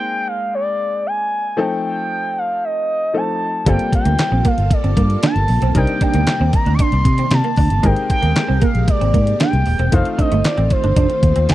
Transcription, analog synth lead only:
Already playing: G5
0.28 F5
0.55 D5
1.07 G#5
1.60 G5
1.86 G5
2.38 F5
2.65 D#5
3.17 A5
3.69 G5
3.95 G5
4.47 F5
4.73 D5
5.25 A5
5.77 G5
6.03 G5
6.55 A#5
6.74 D6
6.81 C6
7.34 A5
7.86 G5
8.11 G5
8.63 F5
8.89 D5
9.41 G5
9.93 F5
10.13 F5
10.20 D#5
10.46 D5
10.72 C5
11.50 A5

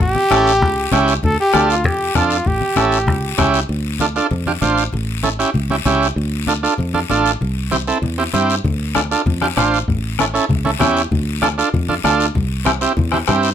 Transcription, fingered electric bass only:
0.00 A1
0.31 A1
0.62 C#2
0.93 C#2
1.24 D2
1.54 D2
1.85 F2
2.15 F2
2.46 A1
2.77 A1
3.07 C#2
3.39 C#2
3.69 D2
4.31 F2
4.62 A1
4.94 A1
5.55 C#2
5.85 C#2
6.16 D2
6.79 F2
7.11 A1
7.41 C2
8.02 E2
8.34 G2
8.64 D2
9.26 F2
9.57 A1
9.88 A1
10.50 C#2
10.81 E2
11.12 D2
11.74 F2
12.04 D2
12.36 C2
12.97 E2
13.28 G2

